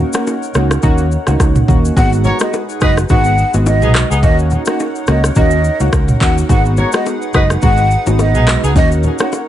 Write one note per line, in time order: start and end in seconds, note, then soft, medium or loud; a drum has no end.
0.00 0.10 A#3 medium
0.00 0.10 C#4 medium
0.00 0.10 D#4 medium
0.00 1.92 D#4 medium
0.00 0.10 F#4 loud
0.00 1.94 A#4 medium
0.00 1.94 C#5 medium
0.00 1.93 F#5 medium
0.13 0.34 A#3 medium
0.13 0.34 C#4 medium
0.13 0.35 D#4 medium
0.13 0.35 F#4 medium
0.13 cross-stick loud
0.13 low bongo medium
0.13 shaker loud
0.27 high bongo medium
0.27 shaker medium
0.43 shaker medium
0.54 0.76 C#2 medium
0.54 0.77 A#3 medium
0.54 0.77 C#4 medium
0.54 0.77 D#4 medium
0.54 0.77 F#4 medium
0.54 cross-stick loud
0.54 high bongo medium
0.54 shaker medium
0.71 cross-stick loud
0.71 high bongo medium
0.71 shaker medium
0.82 1.15 D#2 loud
0.82 1.05 A#3 loud
0.82 1.05 C#4 medium
0.82 1.05 D#4 medium
0.82 1.05 F#4 loud
0.82 kick medium
0.82 low conga medium
0.82 shaker medium
0.98 shaker medium
1.11 shaker medium
1.26 1.37 C#2 loud
1.26 1.65 A#3 medium
1.26 1.65 C#4 medium
1.26 1.65 D#4 medium
1.26 1.65 F#4 medium
1.26 cross-stick medium
1.26 low bongo medium
1.26 shaker medium
1.40 1.61 C#2 medium
1.40 kick loud
1.40 cross-stick medium
1.40 high bongo medium
1.40 low bongo medium
1.40 shaker medium
1.55 mid tom loud
1.55 shaker medium
1.68 1.89 D#2 loud
1.68 1.94 A#3 medium
1.68 1.95 C#4 medium
1.68 1.95 D#4 medium
1.68 1.95 F#4 medium
1.68 kick loud
1.68 mid tom medium
1.68 shaker medium
1.85 shaker medium
1.96 2.29 G#1 loud
1.96 2.37 G#3 medium
1.96 2.37 B3 medium
1.96 9.48 D#4 medium
1.96 2.37 D#4 medium
1.96 2.37 F#4 loud
1.96 4.21 G#4 medium
1.96 4.21 B4 medium
1.96 6.45 F#5 medium
1.96 2.10 F#5 loud
1.96 kick loud
1.96 low conga medium
1.96 shaker medium
2.13 shaker medium
2.24 2.37 F#4 medium
2.24 2.37 A#4 medium
2.24 2.37 C#5 loud
2.24 low bongo soft
2.24 low conga medium
2.24 shaker soft
2.39 2.61 G#3 medium
2.39 2.61 B3 medium
2.39 2.61 D#4 medium
2.39 2.61 F#4 medium
2.39 2.52 D#5 medium
2.39 cross-stick loud
2.39 low bongo medium
2.39 shaker loud
2.53 high bongo medium
2.53 shaker medium
2.69 shaker medium
2.81 3.02 F#1 medium
2.81 3.03 G#3 medium
2.81 3.03 B3 medium
2.81 3.03 D#4 medium
2.81 2.91 F#4 medium
2.81 3.03 F#4 medium
2.81 2.91 G#4 medium
2.81 2.91 B4 medium
2.81 2.95 D#5 medium
2.81 kick loud
2.81 cross-stick loud
2.81 high bongo medium
2.81 shaker medium
2.97 cross-stick medium
2.97 high bongo medium
2.97 shaker medium
3.09 3.42 G#1 loud
3.09 3.32 G#3 loud
3.09 3.32 B3 medium
3.09 3.32 D#4 medium
3.09 3.32 F#4 loud
3.09 3.51 F#5 loud
3.09 kick medium
3.09 low conga medium
3.09 shaker medium
3.24 shaker medium
3.38 shaker medium
3.53 3.82 G#1 medium
3.53 3.92 G#3 medium
3.53 3.92 B3 medium
3.53 3.92 D#4 medium
3.53 3.92 F#4 medium
3.53 low bongo medium
3.53 shaker medium
3.66 4.08 D#5 medium
3.66 high bongo medium
3.66 low bongo medium
3.66 shaker medium
3.82 4.03 B1 loud
3.82 3.92 B3 medium
3.82 3.92 D#4 medium
3.82 3.92 G#4 medium
3.82 mid tom loud
3.82 shaker medium
3.95 4.21 G#3 medium
3.95 4.21 B3 medium
3.95 4.21 D#4 medium
3.95 4.21 F#4 medium
3.95 cross-stick loud
3.95 clap loud
3.95 shaker soft
4.10 4.23 C#2 medium
4.10 4.18 B3 medium
4.10 4.18 D#4 medium
4.10 4.18 G#4 loud
4.10 shaker medium
4.23 4.55 D#2 loud
4.23 4.63 A#3 medium
4.23 4.63 C#4 medium
4.23 4.63 D#4 medium
4.23 4.63 F#4 loud
4.23 6.47 A#4 medium
4.23 6.47 C#5 medium
4.23 4.36 D#5 loud
4.23 kick loud
4.23 low conga medium
4.23 shaker medium
4.39 shaker medium
4.50 low bongo soft
4.50 low conga medium
4.50 shaker soft
4.66 4.87 A#3 medium
4.66 4.87 C#4 medium
4.66 4.87 D#4 medium
4.66 4.88 F#4 medium
4.66 4.78 F#5 medium
4.66 cross-stick loud
4.66 low bongo medium
4.66 shaker loud
4.80 high bongo medium
4.80 shaker medium
4.96 shaker medium
5.07 5.29 C#2 medium
5.07 5.30 A#3 medium
5.07 5.30 C#4 medium
5.07 5.30 D#4 medium
5.07 5.30 F#4 medium
5.07 5.21 D#5 medium
5.07 cross-stick loud
5.07 high bongo medium
5.07 shaker medium
5.24 cross-stick loud
5.24 high bongo medium
5.24 shaker loud
5.35 5.68 D#2 loud
5.35 5.58 A#3 loud
5.35 5.58 C#4 medium
5.35 5.58 D#4 medium
5.35 5.58 F#4 loud
5.35 5.78 D#5 loud
5.35 kick medium
5.35 low conga medium
5.35 shaker medium
5.51 shaker medium
5.64 shaker medium
5.80 5.89 C#2 loud
5.80 6.18 A#3 medium
5.80 6.18 C#4 medium
5.80 6.18 D#4 medium
5.80 6.18 F#4 medium
5.80 low bongo medium
5.80 shaker medium
5.93 6.13 C#2 medium
5.93 kick loud
5.93 cross-stick loud
5.93 high bongo medium
5.93 low bongo medium
5.93 shaker medium
6.08 mid tom loud
6.08 shaker medium
6.21 6.42 D#2 medium
6.21 6.47 A#3 medium
6.21 6.47 C#4 medium
6.21 6.47 D#4 medium
6.21 6.47 F#4 medium
6.21 6.35 F#5 medium
6.21 kick loud
6.21 clap loud
6.21 shaker medium
6.38 shaker medium
6.49 6.81 G#1 loud
6.49 6.89 G#3 medium
6.49 6.89 B3 medium
6.49 6.90 D#4 medium
6.49 6.90 F#4 loud
6.49 8.73 G#4 medium
6.49 8.73 B4 medium
6.49 8.73 F#5 loud
6.49 6.63 F#5 loud
6.49 kick loud
6.49 low conga medium
6.49 shaker medium
6.65 shaker medium
6.77 6.90 F#4 medium
6.77 6.90 A#4 medium
6.77 6.90 C#5 medium
6.77 low bongo soft
6.77 low conga medium
6.77 shaker medium
6.92 7.14 G#3 medium
6.92 7.14 B3 medium
6.92 7.14 D#4 medium
6.92 7.14 F#4 medium
6.92 7.04 D#5 medium
6.92 cross-stick loud
6.92 low bongo medium
6.92 shaker loud
7.06 high bongo medium
7.06 shaker medium
7.22 shaker medium
7.33 7.55 F#1 loud
7.33 7.56 G#3 medium
7.33 7.56 B3 medium
7.33 7.56 D#4 medium
7.33 7.44 F#4 medium
7.33 7.56 F#4 medium
7.33 7.43 G#4 medium
7.33 7.44 B4 loud
7.33 7.48 D#5 medium
7.33 kick loud
7.33 cross-stick loud
7.33 high bongo medium
7.33 shaker medium
7.50 cross-stick loud
7.50 high bongo medium
7.50 shaker medium
7.62 7.95 G#1 loud
7.62 7.84 G#3 loud
7.62 7.84 B3 medium
7.62 7.84 D#4 medium
7.62 7.85 F#4 loud
7.62 8.04 F#5 loud
7.62 kick medium
7.62 low conga medium
7.62 shaker medium
7.77 shaker medium
7.91 shaker medium
8.06 8.35 G#1 medium
8.06 8.44 G#3 medium
8.06 8.44 B3 medium
8.06 8.44 D#4 medium
8.06 8.44 F#4 medium
8.06 low bongo medium
8.06 shaker medium
8.19 8.61 D#5 medium
8.19 high bongo medium
8.19 low bongo medium
8.19 shaker medium
8.35 8.56 B1 loud
8.35 8.45 B3 medium
8.35 8.45 D#4 medium
8.35 8.45 G#4 medium
8.35 mid tom loud
8.35 shaker medium
8.47 8.73 G#3 medium
8.47 8.74 B3 medium
8.47 8.74 D#4 medium
8.47 8.74 F#4 medium
8.47 cross-stick loud
8.47 clap loud
8.47 shaker soft
8.63 8.76 C#2 medium
8.63 8.71 B3 medium
8.63 8.71 D#4 medium
8.63 8.71 G#4 medium
8.63 shaker medium
8.76 9.08 D#2 loud
8.76 9.16 A#3 medium
8.76 9.16 C#4 medium
8.76 9.16 D#4 medium
8.76 9.16 F#4 loud
8.76 9.48 A#4 medium
8.76 9.48 C#5 medium
8.76 8.89 D#5 loud
8.76 9.48 F#5 medium
8.76 kick loud
8.76 low conga medium
8.76 shaker medium
8.92 shaker medium
9.03 low bongo soft
9.03 low conga medium
9.03 shaker medium
9.19 9.40 A#3 medium
9.19 9.40 C#4 medium
9.19 9.40 D#4 medium
9.19 9.40 F#4 medium
9.19 9.31 F#5 medium
9.19 cross-stick loud
9.19 low bongo medium
9.19 shaker loud
9.32 high bongo medium
9.32 shaker medium